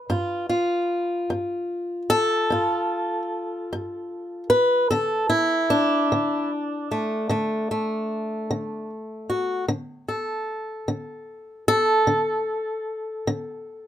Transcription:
Already playing: B4
0.10 G2 F4
0.49 F4
1.30 G2
2.10 A4
2.50 G2 F4
3.73 G2
4.50 B4
4.91 D3 A4
5.30 E4
5.70 D4
6.12 D3
6.92 A3
7.29 D3 A3
7.71 A3
8.51 D3
9.30 F#4
9.68 D3
10.08 A4
10.88 D3
11.68 A4
12.07 D3
13.27 D3

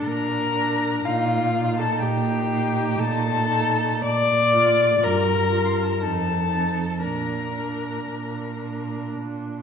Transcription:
Already playing: D4
0.05 A#2 A#4 A#5
0.56 D4
1.05 A#2 D#4 F4 F5
1.56 D#4
1.78 A4 A5
2.02 A#2 G4 G5
2.49 D#4
2.99 A#2 A4 A5
3.49 D#4
4.04 A#2 D5 D6
4.53 F4
5.01 G2 F4 A#4 A#5
5.50 F4
5.65 C6
5.74 A#5
5.82 A5
5.91 A#5
6.00 F2 D#4 A4 A5
6.51 D#4
7.02 A#2 D4 A#4 A#5
7.54 D4
8.09 A#2
8.60 D4
9.14 A#2

